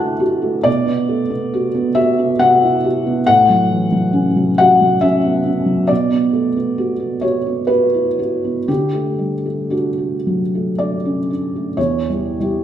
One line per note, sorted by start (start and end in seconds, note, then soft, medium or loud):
0.00 0.61 D3 soft
0.00 0.69 G3 soft
0.00 0.42 A3 soft
0.00 0.22 E4 soft
0.00 0.20 F#4 medium
0.00 0.69 B4 medium
0.00 0.63 D5 medium
0.00 0.62 F#5 soft
0.00 0.63 A5 soft
0.00 0.65 F#6 soft
0.20 0.56 F#4 soft
0.42 0.65 A3 soft
0.63 3.22 B2 medium
0.63 1.95 D5 medium
0.86 1.22 B3 soft
1.09 1.31 A3 soft
1.30 1.66 B3 soft
1.54 1.88 F#4 soft
1.75 2.10 B3 soft
1.95 2.31 F#4 soft
1.95 2.40 E5 medium
2.19 2.54 B3 soft
2.39 2.75 F#4 medium
2.39 3.25 F#5 medium
2.63 2.85 E4 soft
2.84 3.19 F#4 soft
3.06 3.28 B3 soft
3.27 5.86 A2 medium
3.27 4.57 F#5 loud
3.49 3.84 F#3 soft
3.71 3.93 E3 soft
3.92 4.28 F#3 soft
4.13 4.49 C#4 soft
4.36 4.72 F#3 soft
4.58 4.94 F#4 soft
4.58 5.02 F#5 medium
4.81 5.16 F#3 soft
5.01 5.37 C#4 soft
5.01 5.89 E5 medium
5.25 5.47 B3 soft
5.46 5.81 C#4 soft
5.66 5.89 F#3 soft
5.88 8.64 B2 medium
5.88 7.22 D5 medium
6.11 6.46 B3 soft
6.33 6.56 A3 soft
6.57 6.92 B3 soft
6.78 7.14 F#4 soft
7.00 7.37 B3 soft
7.21 7.60 F#4 soft
7.21 7.69 C#5 medium
7.46 7.84 B3 soft
7.67 8.08 F#4 soft
7.67 8.67 B4 medium
7.94 8.18 E4 soft
8.19 8.59 F#4 soft
8.44 8.69 B3 soft
8.68 11.73 D3 soft
8.68 9.71 G4 medium
8.93 9.34 A3 soft
9.19 9.45 G3 soft
9.46 9.87 A3 soft
9.70 10.14 D4 soft
9.70 11.29 F#4 soft
9.98 10.42 A3 soft
10.27 10.69 F#3 soft
10.55 10.95 A3 soft
10.79 11.19 D4 soft
10.79 11.77 D5 medium
11.05 11.30 C#4 soft
11.30 11.68 D4 soft
11.56 11.78 A3 soft
11.77 12.07 E2 soft
11.77 12.64 C#5 medium
12.09 12.37 G3 soft
12.09 12.37 E4 soft
12.09 12.37 G4 soft
12.40 12.64 G3 soft
12.40 12.64 E4 soft
12.40 12.64 G4 soft